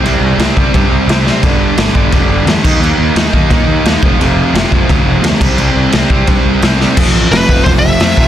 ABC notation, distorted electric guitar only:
X:1
M:4/4
L:1/8
Q:1/4=173
K:Flyd
V:1 name="Distorted electric guitar" clef=bass
[C,G,C]2 [C,G,C] [C,G,C] [C,G,C]2 [C,G,C] [C,G,C] | [G,,D,G,]2 [G,,D,G,] [G,,D,G,] [G,,D,G,]2 [G,,D,G,] [_E,_B,_E] | [_E,_B,_E]2 [E,B,E] [E,B,E] [E,B,E]2 [E,B,E] [F,,C,F,] | [F,,C,F,]2 [F,,C,F,] [F,,C,F,] [F,,C,F,]2 [F,,C,F,] [C,G,C] |
[C,G,C]2 [C,G,C] [C,G,C] [C,G,C]2 [C,G,C] [C,G,C] | [F,,C,F,]2 [F,,C,F,] [F,,C,F,] [F,,C,F,]2 [F,,C,F,] [F,,C,F,] |]